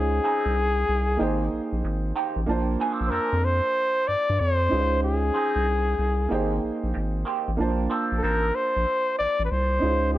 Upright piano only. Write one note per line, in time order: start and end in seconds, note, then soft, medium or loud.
0.00 1.15 C#4 medium
0.00 1.16 D#4 medium
0.00 1.17 F4 medium
0.00 1.17 G#4 medium
0.00 1.18 C5 medium
1.17 2.43 A#3 medium
1.17 2.44 D#4 medium
1.17 2.44 G5 medium
1.21 2.45 G#4 medium
1.21 2.46 C5 medium
2.46 4.66 A#3 medium
2.46 4.66 D4 medium
2.46 4.67 F4 medium
2.46 4.67 A5 medium
2.51 4.68 C5 medium
4.68 6.26 C#4 medium
4.68 6.27 D#4 medium
4.68 6.27 F4 medium
4.68 6.28 G#4 medium
4.74 4.80 B4 soft
4.80 6.32 C5 medium
6.29 7.54 A#3 medium
6.29 7.55 D#4 medium
6.29 7.56 G#4 medium
6.29 7.56 G5 medium
6.34 7.57 C5 medium
7.57 9.76 A#3 medium
7.57 9.77 D4 medium
7.57 9.78 F4 medium
7.57 9.78 A5 medium
7.62 9.79 C5 medium
9.79 10.18 C#4 medium
9.79 10.18 D#4 medium
9.79 10.18 F4 medium
9.84 10.18 G#4 medium
9.84 10.18 C5 medium